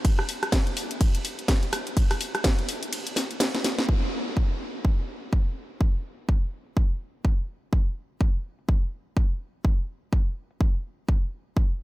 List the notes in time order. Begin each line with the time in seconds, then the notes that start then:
0.05 kick, closed hi-hat, ride
0.19 cross-stick
0.29 open hi-hat
0.43 cross-stick, closed hi-hat
0.52 kick, snare, closed hi-hat, ride
0.67 closed hi-hat
0.77 open hi-hat
0.91 closed hi-hat
1.01 kick, closed hi-hat, ride
1.15 closed hi-hat
1.25 open hi-hat
1.39 closed hi-hat
1.48 kick, snare, closed hi-hat, ride
1.63 closed hi-hat
1.73 cross-stick, open hi-hat
1.87 closed hi-hat
1.97 kick, closed hi-hat, ride
2.11 cross-stick, open hi-hat
2.21 open hi-hat
2.35 cross-stick, closed hi-hat
2.44 kick, snare, closed hi-hat, ride
2.59 closed hi-hat
2.69 open hi-hat
2.83 closed hi-hat
2.93 closed hi-hat, ride
3.07 closed hi-hat
3.16 snare, open hi-hat
3.31 closed hi-hat
3.40 snare, closed hi-hat, ride
3.55 snare, closed hi-hat
3.64 snare, open hi-hat
3.79 snare, closed hi-hat
3.89 kick, closed hi-hat
4.37 kick
4.74 closed hi-hat
4.85 kick
4.98 closed hi-hat
5.33 kick
5.81 kick
5.95 closed hi-hat
6.29 kick
6.67 closed hi-hat
6.77 kick
6.91 closed hi-hat
7.25 kick
7.73 kick
8.21 kick
8.59 closed hi-hat
8.69 kick
8.83 closed hi-hat
9.17 kick
9.65 kick
10.13 kick
10.51 closed hi-hat
10.61 kick
10.75 closed hi-hat
11.09 kick
11.57 kick